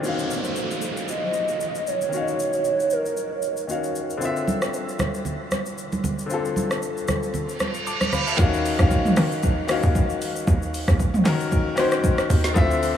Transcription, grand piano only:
0.00 2.07 D#3 medium
0.00 2.08 C#4 medium
0.05 2.09 F#4 medium
0.05 2.10 F5 medium
2.09 3.64 D#3 medium
2.09 3.65 C#4 medium
2.14 3.67 F#4 medium
2.14 3.68 F5 medium
3.67 4.20 D#3 medium
3.67 4.21 C#4 medium
3.67 4.22 F#4 medium
3.67 4.22 F5 medium
4.17 6.24 D3 medium
4.17 6.25 C4 medium
4.22 6.27 F4 medium
4.22 6.28 E5 medium
6.26 8.33 D3 medium
6.26 8.34 C4 medium
6.31 8.35 F4 medium
6.31 8.37 A4 medium
7.87 8.12 A5 medium
7.87 8.11 D6 medium
8.13 8.27 F5 medium
8.13 8.26 B5 medium
8.27 8.52 E5 medium
8.27 8.52 A5 medium
8.37 8.70 D#3 loud
8.37 8.70 C#4 loud
8.37 8.71 F#4 loud
8.37 8.72 F5 loud
8.77 9.51 D#3 medium
8.77 9.51 C#4 medium
8.77 9.52 F#4 medium
8.77 9.53 F5 loud
9.67 10.52 D#3 medium
9.67 10.53 C#4 medium
9.67 10.54 F#4 medium
9.67 10.54 F5 loud
11.24 11.67 D#3 medium
11.24 11.68 C#4 medium
11.24 11.69 F#4 medium
11.24 11.69 A#4 loud
11.76 12.40 D#3 loud
11.76 12.41 C#4 medium
11.76 12.42 F#4 medium
11.76 12.42 C5 loud
12.54 12.87 D3 loud
12.54 12.88 C4 loud
12.54 12.88 F4 loud
12.54 12.89 E5 loud

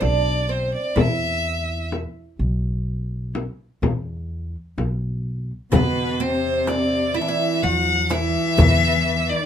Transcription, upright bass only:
0.02 0.74 B1 medium
0.96 2.04 E2 medium
2.39 3.48 B1 medium
3.82 4.54 E2 medium
4.78 5.50 B1 medium
5.73 7.17 E2 medium
7.63 8.35 E2 medium
8.58 9.30 E2 medium

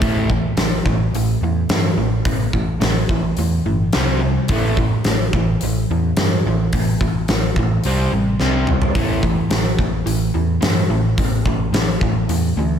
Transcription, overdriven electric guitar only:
0.00 0.28 A2 medium
0.00 0.28 E3 medium
0.00 0.28 A3 medium
0.30 0.55 A2 medium
0.30 0.55 E3 medium
0.57 0.83 A2 medium
0.57 0.83 E3 medium
0.87 1.12 A2 medium
0.87 1.12 E3 medium
1.15 1.40 A2 medium
1.15 1.40 E3 medium
1.43 1.68 A2 medium
1.43 1.68 E3 medium
1.71 1.96 A2 medium
1.71 1.96 E3 medium
1.98 2.23 A2 medium
1.98 2.23 E3 medium
2.25 2.51 A2 medium
2.25 2.51 E3 medium
2.53 2.79 A2 medium
2.53 2.79 E3 medium
2.80 3.06 A2 medium
2.80 3.07 E3 medium
3.10 3.35 A2 medium
3.10 3.36 E3 medium
3.38 3.63 A2 medium
3.38 3.63 E3 medium
3.66 3.91 A2 medium
3.66 3.91 E3 medium
3.93 4.20 C3 medium
3.93 4.20 G3 medium
3.93 4.21 C4 medium
4.22 4.47 C3 medium
4.22 4.47 G3 medium
4.50 4.76 A2 medium
4.50 4.77 E3 medium
4.50 4.77 A3 medium
4.78 5.03 A2 medium
4.78 5.03 E3 medium
5.07 5.32 A2 medium
5.07 5.32 E3 medium
5.35 5.59 A2 medium
5.35 5.60 E3 medium
5.63 5.87 A2 medium
5.63 5.88 E3 medium
5.91 6.15 A2 medium
5.91 6.15 E3 medium
6.20 6.44 A2 medium
6.20 6.44 E3 medium
6.47 6.71 A2 medium
6.47 6.72 E3 medium
6.75 6.99 A2 medium
6.75 6.99 E3 medium
7.01 7.26 A2 medium
7.01 7.26 E3 medium
7.30 7.54 A2 medium
7.30 7.55 E3 medium
7.59 7.83 A2 medium
7.59 7.83 E3 medium
7.86 8.11 C3 medium
7.86 8.12 G3 medium
7.86 8.12 C4 medium
8.13 8.38 C3 medium
8.13 8.38 G3 medium
8.41 8.67 C3 medium
8.41 8.67 G3 medium
8.41 8.67 C4 medium
8.69 8.94 C3 medium
8.69 8.94 G3 medium
8.95 9.22 A2 medium
8.95 9.22 E3 medium
8.95 9.22 A3 medium
9.24 9.49 A2 medium
9.24 9.49 E3 medium
9.50 9.76 A2 medium
9.50 9.76 E3 medium
9.80 10.05 A2 medium
9.80 10.05 E3 medium
10.06 10.32 A2 medium
10.06 10.32 E3 medium
10.34 10.60 A2 soft
10.34 10.60 E3 medium
10.61 10.87 A2 medium
10.61 10.87 E3 medium
10.90 11.15 A2 medium
10.90 11.16 E3 medium
11.18 11.43 A2 medium
11.18 11.43 E3 medium
11.46 11.71 A2 medium
11.46 11.72 E3 medium
11.73 11.99 A2 medium
11.73 11.99 E3 medium
12.03 12.27 A2 medium
12.03 12.28 E3 medium
12.29 12.55 A2 medium
12.29 12.55 E3 medium
12.57 12.79 A2 medium
12.57 12.79 E3 medium

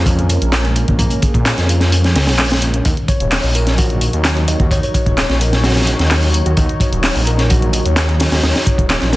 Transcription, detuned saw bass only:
0.00 0.37 F2 loud
0.42 0.84 A#1 medium
0.88 0.97 A#1 medium
0.99 1.08 A#1 loud
1.34 1.52 A#2 loud
1.58 2.15 F2 loud
2.16 2.29 C#2 medium
2.27 2.81 A#1 medium
2.85 2.95 D#2 loud
3.20 3.38 D#1 loud
3.44 4.09 A#1 loud
4.13 4.55 D#2 medium
4.60 4.69 D#2 medium
4.71 4.80 D#2 loud
5.06 5.24 D#1 loud
5.29 5.95 A#1 loud
5.99 6.42 D#2 medium
6.46 6.55 D#2 medium
6.57 6.66 D#2 loud
6.92 7.10 D#1 loud
7.16 7.81 A#1 loud
7.85 8.28 D#2 medium
8.32 8.41 D#2 medium
8.43 8.52 D#2 loud
8.78 8.96 D#1 loud
9.02 9.16 A#1 loud

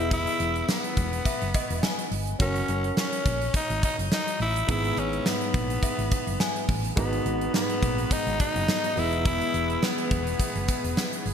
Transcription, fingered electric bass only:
0.00 0.25 E1 medium
0.40 0.61 E1 loud
0.97 1.18 E1 loud
1.41 1.51 F#1 medium
1.70 1.80 E1 medium
2.11 2.33 G1 medium
2.40 2.61 F#1 loud
2.69 2.90 F#1 loud
3.26 3.47 A#1 loud
3.70 3.79 G#1 medium
3.98 4.08 F#1 loud
4.40 4.61 A1 loud
4.69 4.90 G#1 loud
4.97 5.18 G#1 loud
5.54 5.76 A#1 loud
5.99 6.08 G#1 medium
6.27 6.36 F#1 medium
6.69 6.90 A1 loud
6.97 7.18 G#1 loud
7.25 7.47 G#1 loud
7.82 8.04 A#1 loud
8.27 8.36 G#1 medium
8.55 8.65 F#1 loud
8.97 9.40 E1 loud
9.54 9.75 E1 medium
10.11 10.33 E1 loud
10.55 10.65 F#1 medium
10.84 10.94 E1 medium
11.26 11.34 G1 medium

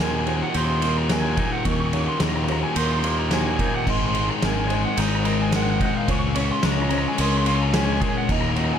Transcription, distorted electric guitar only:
0.00 0.26 D#2 medium
0.00 0.25 A#2 medium
0.00 0.27 D#3 medium
0.26 0.53 D#2 medium
0.26 0.53 A#2 medium
0.26 0.54 D#3 medium
0.54 0.81 D#2 medium
0.54 0.81 A#2 medium
0.54 0.82 D#3 medium
0.82 1.09 D#2 medium
0.82 1.09 A#2 medium
0.82 1.10 D#3 medium
1.10 1.37 D#2 medium
1.10 1.37 A#2 medium
1.10 1.38 D#3 medium
1.38 1.64 D#2 medium
1.38 1.65 A#2 medium
1.38 1.65 D#3 medium
1.66 1.93 D#2 medium
1.66 1.93 A#2 medium
1.66 1.93 D#3 loud
1.94 2.21 D#2 medium
1.94 2.21 A#2 medium
1.94 2.22 D#3 medium
2.22 2.47 D#2 medium
2.22 2.48 A#2 medium
2.22 2.48 D#3 medium
2.48 2.75 D#2 medium
2.48 2.76 A#2 medium
2.48 2.76 D#3 medium
2.76 3.02 D#2 medium
2.76 3.02 A#2 medium
2.76 3.03 D#3 medium
3.03 3.29 D#2 medium
3.03 3.29 A#2 medium
3.03 3.30 D#3 medium
3.31 3.57 D#2 medium
3.31 3.58 A#2 medium
3.31 3.58 D#3 loud
3.58 3.85 D#2 medium
3.58 3.85 A#2 medium
3.58 3.85 D#3 medium
3.86 4.12 G#2 medium
3.86 4.13 D#3 medium
3.86 4.14 G#3 loud
4.13 4.41 G#2 loud
4.13 4.41 D#3 medium
4.13 4.42 G#3 loud
4.42 4.68 G#2 medium
4.42 4.69 D#3 medium
4.42 4.70 G#3 medium
4.70 4.96 G#2 medium
4.70 4.96 D#3 medium
4.70 4.97 G#3 medium
4.97 5.24 G#2 medium
4.97 5.25 D#3 medium
4.97 5.25 G#3 medium
5.25 5.50 G#2 medium
5.25 5.51 D#3 medium
5.25 5.52 G#3 medium
5.52 5.79 G#2 medium
5.52 5.80 D#3 medium
5.52 5.80 G#3 loud
5.80 6.07 G#2 medium
5.80 6.07 D#3 medium
5.80 6.07 G#3 medium
6.08 6.34 C#3 medium
6.08 6.35 G#3 loud
6.08 6.35 C#4 medium
6.35 6.61 C#3 medium
6.35 6.62 G#3 medium
6.35 6.62 C#4 loud
6.63 6.89 C#3 medium
6.63 6.90 G#3 medium
6.63 6.90 C#4 medium
6.90 7.17 C#3 medium
6.90 7.18 G#3 medium
6.90 7.18 C#4 medium
7.18 7.44 C#3 medium
7.18 7.45 G#3 medium
7.18 7.46 C#4 medium
7.46 7.72 C#3 medium
7.46 7.73 G#3 medium
7.46 7.74 C#4 medium
7.73 8.00 C#3 medium
7.73 8.01 G#3 medium
7.73 8.01 C#4 medium
8.01 8.28 C#3 medium
8.01 8.28 G#3 medium
8.01 8.28 C#4 medium
8.29 8.56 D#2 medium
8.29 8.56 A#2 medium
8.29 8.57 D#3 medium
8.56 8.79 D#2 medium
8.56 8.79 A#2 medium
8.56 8.79 D#3 medium

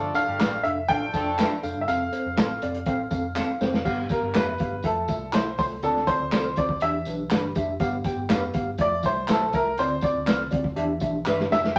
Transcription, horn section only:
0.00 0.25 F3 loud
0.00 0.25 A3 medium
0.00 0.25 D4 loud
0.00 0.25 A4 loud
0.26 0.62 D3 medium
0.26 0.61 G3 medium
0.26 0.62 A3 medium
0.26 0.61 G4 medium
0.89 1.09 F3 medium
0.89 1.09 A3 medium
0.89 1.09 D4 medium
0.89 1.09 A4 medium
1.13 1.60 F3 loud
1.13 1.60 A3 loud
1.13 1.60 D4 loud
1.13 1.60 A4 loud

